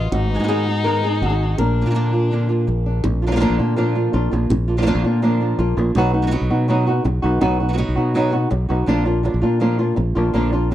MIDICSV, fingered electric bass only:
0, 0, Header, 1, 2, 480
1, 0, Start_track
1, 0, Tempo, 365186
1, 156, Time_signature, 4, 2, 24, 8
1, 14125, End_track
2, 0, Start_track
2, 0, Title_t, "Fingered electric bass"
2, 0, Program_c, 0, 33
2, 155, Note_on_c, 0, 32, 81
2, 474, Note_off_c, 0, 32, 0
2, 518, Note_on_c, 0, 44, 70
2, 1597, Note_on_c, 0, 32, 87
2, 1617, Note_off_c, 0, 44, 0
2, 2022, Note_off_c, 0, 32, 0
2, 2083, Note_on_c, 0, 34, 87
2, 2399, Note_off_c, 0, 34, 0
2, 2442, Note_on_c, 0, 46, 79
2, 3523, Note_on_c, 0, 34, 78
2, 3543, Note_off_c, 0, 46, 0
2, 3945, Note_off_c, 0, 34, 0
2, 4002, Note_on_c, 0, 34, 85
2, 4530, Note_off_c, 0, 34, 0
2, 4602, Note_on_c, 0, 34, 82
2, 4707, Note_off_c, 0, 34, 0
2, 4723, Note_on_c, 0, 46, 101
2, 5355, Note_off_c, 0, 46, 0
2, 5440, Note_on_c, 0, 34, 104
2, 5650, Note_off_c, 0, 34, 0
2, 5683, Note_on_c, 0, 34, 104
2, 5891, Note_off_c, 0, 34, 0
2, 5913, Note_on_c, 0, 34, 96
2, 6442, Note_off_c, 0, 34, 0
2, 6505, Note_on_c, 0, 34, 95
2, 6615, Note_off_c, 0, 34, 0
2, 6627, Note_on_c, 0, 46, 96
2, 7263, Note_off_c, 0, 46, 0
2, 7343, Note_on_c, 0, 34, 105
2, 7559, Note_off_c, 0, 34, 0
2, 7587, Note_on_c, 0, 34, 105
2, 7801, Note_off_c, 0, 34, 0
2, 7829, Note_on_c, 0, 35, 97
2, 8359, Note_off_c, 0, 35, 0
2, 8430, Note_on_c, 0, 35, 91
2, 8536, Note_off_c, 0, 35, 0
2, 8552, Note_on_c, 0, 47, 98
2, 9186, Note_off_c, 0, 47, 0
2, 9266, Note_on_c, 0, 35, 107
2, 9480, Note_off_c, 0, 35, 0
2, 9515, Note_on_c, 0, 35, 107
2, 9725, Note_off_c, 0, 35, 0
2, 9753, Note_on_c, 0, 35, 93
2, 10281, Note_off_c, 0, 35, 0
2, 10363, Note_on_c, 0, 35, 85
2, 10464, Note_off_c, 0, 35, 0
2, 10480, Note_on_c, 0, 47, 92
2, 11111, Note_off_c, 0, 47, 0
2, 11196, Note_on_c, 0, 35, 99
2, 11406, Note_off_c, 0, 35, 0
2, 11432, Note_on_c, 0, 35, 98
2, 11644, Note_off_c, 0, 35, 0
2, 11667, Note_on_c, 0, 34, 85
2, 12199, Note_off_c, 0, 34, 0
2, 12277, Note_on_c, 0, 34, 94
2, 12381, Note_off_c, 0, 34, 0
2, 12392, Note_on_c, 0, 46, 97
2, 13029, Note_off_c, 0, 46, 0
2, 13113, Note_on_c, 0, 34, 105
2, 13326, Note_off_c, 0, 34, 0
2, 13360, Note_on_c, 0, 34, 113
2, 13570, Note_off_c, 0, 34, 0
2, 13593, Note_on_c, 0, 34, 91
2, 14125, Note_off_c, 0, 34, 0
2, 14125, End_track
0, 0, End_of_file